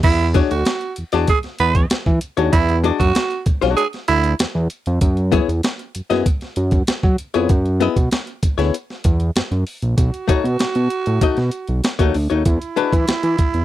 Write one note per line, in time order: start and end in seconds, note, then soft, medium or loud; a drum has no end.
0.03 0.43 E2 loud
0.03 0.29 E4 loud
0.03 kick loud
0.03 crash medium
0.19 closed hi-hat soft
0.34 0.50 G#3 medium
0.34 0.50 D4 medium
0.34 0.50 F#4 medium
0.34 0.50 C#5 loud
0.34 kick medium
0.34 closed hi-hat medium
0.51 0.64 D2 loud
0.51 0.95 F#4 medium
0.51 closed hi-hat medium
0.65 snare loud
0.65 closed hi-hat loud
0.81 closed hi-hat soft
0.96 1.04 E2 soft
0.96 closed hi-hat medium
1.12 1.26 E2 medium
1.12 1.29 G#3 medium
1.12 1.28 D4 medium
1.12 1.28 F#4 medium
1.12 1.28 D5 medium
1.12 snare soft
1.12 closed hi-hat soft
1.27 1.38 G#4 medium
1.27 kick medium
1.27 closed hi-hat medium
1.43 snare soft
1.43 closed hi-hat soft
1.59 1.86 E2 medium
1.59 1.85 B4 loud
1.59 closed hi-hat medium
1.75 kick medium
1.75 closed hi-hat soft
1.90 snare loud
1.90 closed hi-hat medium
2.06 2.19 E3 loud
2.06 kick medium
2.21 closed hi-hat medium
2.37 2.51 D#2 medium
2.37 2.53 G#3 medium
2.37 2.53 D4 medium
2.37 2.53 F#4 medium
2.37 2.52 C#5 medium
2.37 closed hi-hat medium
2.53 2.92 E2 loud
2.53 2.78 E4 loud
2.53 kick medium
2.53 closed hi-hat medium
2.69 closed hi-hat soft
2.84 2.99 G#3 medium
2.84 2.99 D4 medium
2.84 2.99 F#4 medium
2.84 3.00 D5 medium
2.84 closed hi-hat medium
2.99 3.13 F#2 loud
2.99 3.43 F#4 loud
2.99 kick medium
2.99 closed hi-hat medium
3.15 snare loud
3.15 closed hi-hat medium
3.31 closed hi-hat soft
3.46 3.53 B1 medium
3.46 kick medium
3.46 closed hi-hat medium
3.61 3.75 B1 medium
3.61 3.82 G#3 medium
3.61 3.82 D4 medium
3.61 3.82 F#4 medium
3.61 3.82 C#5 medium
3.61 snare soft
3.61 closed hi-hat medium
3.77 3.86 G#4 loud
3.77 closed hi-hat medium
3.93 snare soft
3.93 closed hi-hat soft
4.08 4.35 D2 loud
4.08 4.33 E4 loud
4.08 closed hi-hat medium
4.24 closed hi-hat soft
4.39 4.46 E2 soft
4.39 snare loud
4.39 closed hi-hat medium
4.55 4.68 E2 loud
4.70 closed hi-hat medium
4.86 5.00 F2 loud
4.86 closed hi-hat medium
5.01 5.41 F#2 loud
5.01 kick loud
5.01 closed hi-hat medium
5.17 closed hi-hat soft
5.32 5.47 B3 medium
5.32 5.47 E4 medium
5.32 5.48 G#4 loud
5.32 5.48 C#5 medium
5.32 kick medium
5.32 closed hi-hat medium
5.49 5.61 E2 medium
5.49 closed hi-hat medium
5.63 snare loud
5.63 closed hi-hat loud
5.79 closed hi-hat soft
5.95 6.02 F#2 soft
5.95 closed hi-hat medium
6.10 6.23 F#2 medium
6.10 6.26 B3 medium
6.10 6.26 E4 medium
6.10 6.25 G#4 medium
6.10 6.25 D#5 medium
6.10 snare soft
6.10 closed hi-hat medium
6.26 kick medium
6.26 closed hi-hat medium
6.41 snare soft
6.41 closed hi-hat soft
6.56 6.83 F#2 medium
6.56 closed hi-hat medium
6.71 kick medium
6.71 closed hi-hat soft
6.87 snare loud
6.87 closed hi-hat medium
7.03 7.16 F#3 loud
7.03 kick loud
7.18 closed hi-hat medium
7.34 7.48 F2 medium
7.34 7.50 B3 medium
7.34 7.50 E4 medium
7.34 7.49 G#4 medium
7.34 7.49 C#5 medium
7.34 closed hi-hat medium
7.49 7.89 F#2 loud
7.49 kick loud
7.49 closed hi-hat medium
7.66 closed hi-hat soft
7.80 7.96 B3 medium
7.80 7.96 E4 loud
7.80 7.96 G#4 loud
7.80 7.97 D#5 loud
7.80 closed hi-hat medium
7.96 8.09 B2 medium
7.96 kick medium
7.96 closed hi-hat medium
8.11 snare loud
8.11 closed hi-hat loud
8.27 closed hi-hat soft
8.43 8.49 D2 soft
8.43 kick medium
8.43 closed hi-hat medium
8.58 8.71 D2 medium
8.58 8.74 B3 medium
8.58 8.74 E4 medium
8.58 8.73 G#4 medium
8.58 8.73 C#5 medium
8.58 snare soft
8.58 closed hi-hat soft
8.74 closed hi-hat medium
8.90 snare soft
9.04 9.31 E2 loud
9.04 kick medium
9.04 closed hi-hat medium
9.20 closed hi-hat soft
9.36 9.42 F#2 medium
9.36 snare loud
9.36 closed hi-hat medium
9.51 9.64 F#2 loud
9.51 closed hi-hat soft
9.67 open hi-hat medium
9.82 9.95 A#1 medium
9.82 closed hi-hat medium
9.97 10.11 B1 loud
9.97 12.10 F#4 medium
9.97 kick loud
9.97 closed hi-hat medium
10.14 closed hi-hat medium
10.28 10.35 B2 soft
10.28 10.43 A3 medium
10.28 10.44 D#4 medium
10.28 10.44 F#4 medium
10.28 10.44 C#5 medium
10.28 kick medium
10.28 closed hi-hat medium
10.44 10.57 B2 medium
10.44 closed hi-hat medium
10.59 10.66 B2 soft
10.59 snare loud
10.59 closed hi-hat medium
10.75 10.88 B2 loud
10.75 closed hi-hat medium
10.90 closed hi-hat medium
11.06 11.20 A2 medium
11.06 closed hi-hat soft
11.21 11.28 B2 soft
11.21 11.37 A3 medium
11.21 11.37 D#4 medium
11.21 11.37 F#4 medium
11.21 11.38 D#5 medium
11.21 kick medium
11.21 closed hi-hat medium
11.37 11.50 B2 loud
11.37 snare soft
11.37 closed hi-hat soft
11.51 closed hi-hat medium
11.68 11.81 B1 medium
11.68 closed hi-hat soft
11.84 snare loud
11.84 closed hi-hat medium
11.99 12.12 D#2 loud
11.99 12.15 A3 medium
11.99 12.15 D#4 medium
11.99 12.14 F#4 medium
11.99 12.14 C#5 medium
11.99 kick medium
11.99 closed hi-hat medium
12.14 12.28 D2 medium
12.14 open hi-hat medium
12.30 12.44 D#2 medium
12.30 12.42 A3 medium
12.30 12.42 D#4 medium
12.30 12.42 F#4 medium
12.30 12.42 C#5 medium
12.30 closed hi-hat soft
12.45 12.59 E2 loud
12.45 13.65 E4 medium
12.45 kick loud
12.45 closed hi-hat medium
12.62 closed hi-hat medium
12.76 12.84 E3 soft
12.76 12.92 G#3 medium
12.76 12.92 D4 medium
12.76 12.92 F#4 medium
12.76 12.92 B4 loud
12.76 closed hi-hat medium
12.93 13.06 E3 loud
12.93 kick medium
12.93 closed hi-hat medium
13.08 13.14 E3 soft
13.08 snare loud
13.08 closed hi-hat medium
13.23 13.36 E3 loud
13.23 closed hi-hat medium
13.38 kick medium
13.38 closed hi-hat medium
13.54 13.65 E2 medium
13.54 closed hi-hat soft